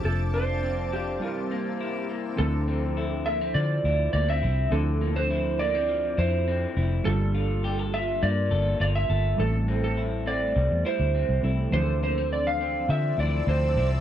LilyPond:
<<
  \new Staff \with { instrumentName = "Ambient pad" } { \time 4/4 \key d \minor \tempo 4 = 103 << { <f'' a'' d'''>2 <g'' bes'' e'''>2 | r1 | r1 | r1 |
r1 | <a'' c''' e'''>1 | } \\ { c''1 | r1 | r1 | r1 |
r1 | d''1 | } >> }
  \new Staff \with { instrumentName = "Electric slide guitar" } { \time 4/4 \key d \minor a'8 c''4 g'2 r8 | a'4. e''8 d''4 d''16 e''8. | a'8. c''8. d''4 c''4 r8 | a'4. e''8 d''4 d''16 e''8. |
a'8. a'8. d''4 c''4 r8 | c''8 c''8 d''16 f''8. e''8 d''8 c''8. r16 | }
  \new Staff \with { instrumentName = "Synth keys" } { \time 4/4 \key d \minor <f c' d' a'>2 <g c' e' bes'>2 | <f c' d' e' a'>1 | <f c' d' e' a'>1 | <g bes d' f' a'>1 |
<g a c' e' a'>2.~ <g a c' e' a'>8 <g a c' e' a'>8 | <e f c' d' gis' a'>1 | }
  \new Staff \with { instrumentName = "Clean electric guitar" } { \time 4/4 \key d \minor f8 d'8 c'8 d'8 c8 bes8 e'8 bes8 | d8 c'8 e'8 bes16 c'16 f8 e'8 bes16 c'16 e'8 | d8 bes16 c'16 e'8 bes16 c'16 f8 e'8 c'8 e'8 | g8 f'8 g'16 a'16 f'8 bes8 a'8 f'8 a'8 |
a,8 c'8 e'8 c'8 g8 e'8 c'8 e'8 | d8 bes16 c'8. c'8 f8 e'8 c'8 e'8 | }
  \new Staff \with { instrumentName = "Fingered electric bass" } { \clef bass \time 4/4 \key d \minor f,,2 r2 | d,2 d8 d,8 d,8 c,8 | d,2~ d,8 f,4 f,,8 | g,,2 g,8 g,,8 g,,8 g,,8 |
a,,2 c,16 e,16 r16 d,8 c,16 c,8 | d,2 d8 d,8 d,8 c,8 | }
>>